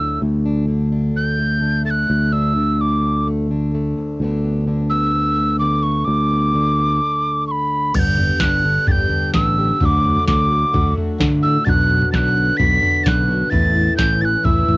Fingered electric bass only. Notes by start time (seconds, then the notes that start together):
Already playing: D2
0.22 D2
2.10 D2
4.20 D2
6.07 D2
7.95 G1
8.41 G1
8.88 G1
9.34 A1
9.81 D2
10.28 D2
10.74 D2
11.20 D3
11.67 B1
12.14 B1
12.60 B1
13.06 B1
13.52 A1
13.98 A1
14.45 A1
14.68 A1